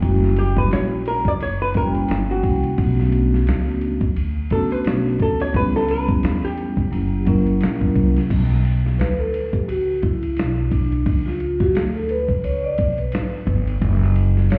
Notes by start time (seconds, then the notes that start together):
0.01 F#1 G3 A#3 C#4 E4 F#4, kick, ride
0.24 snare
0.36 G4, ride
0.57 B4, kick, snare
0.71 A#1 C#5, snare, hi-hat pedal, ride
1.06 A#4, ride
1.25 D5, muted upright bass stroke, kick, ride
1.40 F#1 C#5, ride
1.62 B4
1.74 G3 A#3 C#4 E4 F#4 A#4, kick, ride
1.83 G5
1.95 ride
2.08 G1, snare, hi-hat pedal, ride
2.31 F#4
2.43 C2, kick, ride
2.64 ride
2.77 B1 A3 B3 C#4 D4 F4, kick, ride
2.86 F#4
3.00 snare
3.12 ride
3.34 snare
3.47 C#2, snare, hi-hat pedal, ride
3.81 ride
4.01 muted upright bass stroke, kick, ride
4.16 D2, ride
4.50 A3 B3 C#4 D4 F#4 A4, kick, ride
4.71 B4, ride
4.84 B1 C#5, snare, hi-hat pedal, ride
5.20 D2 A4, kick, ride
5.40 C#5, ride
5.53 C#2 G3 B3 C#4 E4 G4 B4, kick, ride
5.76 A4, snare
5.88 B4, ride
6.08 kick, ride
6.23 E2, snare, hi-hat pedal, ride
6.35 A4
6.45 G4
6.58 ride
6.77 muted upright bass stroke, kick, ride
6.91 F#1 F#3 A#3 C#4 E4 G4, ride
7.25 F#3 A#3 C#4 E4 A#4, kick, ride
7.46 ride
7.61 A#1, snare, hi-hat pedal, ride
7.81 kick
7.96 C2, kick, ride
8.16 snare, ride
8.30 B1, kick, crash, ride
8.52 snare
8.65 ride
8.86 snare
8.99 D2 B4, snare, hi-hat pedal, ride
9.19 A4
9.34 ride
9.53 G4, muted upright bass stroke, kick, ride
9.68 C#2 F#4, ride
10.02 E4, kick, ride
10.23 ride
10.37 B1, snare, hi-hat pedal, ride
10.71 D4, kick, ride
10.92 ride
11.06 C#2, kick, ride
11.26 F4, snare
11.40 ride
11.60 F#4, kick, snare
11.75 D2 G#4, snare, hi-hat pedal, ride
11.95 A4
12.09 B4, ride
12.28 muted upright bass stroke, kick, ride
12.44 C#2 C#5, ride
12.64 D5
12.78 B1, kick, ride
12.98 B4, ride
13.12 G#1, snare, hi-hat pedal, ride
13.47 G1, kick, ride
13.67 ride
13.82 F#1, kick, ride
14.03 snare
14.16 ride
14.37 snare
14.50 A1 C#5, snare, hi-hat pedal, ride